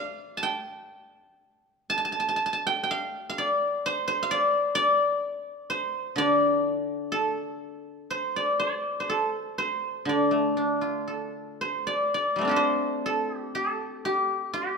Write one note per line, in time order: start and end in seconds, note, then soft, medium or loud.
0.00 0.97 C5 medium
0.00 1.30 D5 medium
0.00 1.62 F5 medium
0.37 1.82 A5 medium
0.43 1.98 G5 medium
1.90 1.97 A5 medium
1.98 2.04 A5 medium
2.05 2.12 A5 medium
2.12 2.19 A5 medium
2.20 2.28 A5 medium
2.29 2.36 A5 medium
2.36 2.45 A5 medium
2.46 2.53 A5 medium
2.53 3.98 A5 medium
2.67 2.83 G5 medium
2.83 4.39 G5 medium
2.91 3.29 F5 medium
3.30 4.22 F5 medium
3.38 4.30 D5 medium
3.86 4.07 C5 medium
4.08 5.69 C5 medium
4.23 5.89 F5 medium
4.31 4.75 D5 medium
4.75 6.18 D5 medium
5.70 7.68 C5 medium
6.16 9.08 D3 medium
6.16 8.03 D5 medium
7.12 9.09 A4 medium
8.10 9.00 C5 medium
8.36 8.59 D5 medium
8.60 10.09 D5 medium
9.00 9.58 C5 soft
9.10 11.07 A4 medium
9.58 11.56 C5 medium
10.05 13.07 D3 soft
10.05 11.86 D5 medium
10.31 12.33 A3 soft
10.57 12.44 D4 soft
10.81 12.46 F4 soft
11.08 12.50 A4 soft
11.61 12.56 C5 medium
11.87 12.14 D5 medium
12.14 13.99 D5 medium
12.36 12.54 G3 soft
12.36 14.78 A3 soft
12.41 14.78 C4 soft
12.41 14.78 D4 soft
12.48 14.78 F4 soft
12.48 13.36 G4 soft
12.48 13.05 A4 soft
12.56 14.54 C5 medium
13.06 13.36 A4 medium
13.36 13.54 G4 medium
13.55 14.78 A4 medium
14.05 14.53 G4 medium
14.53 14.78 G4 medium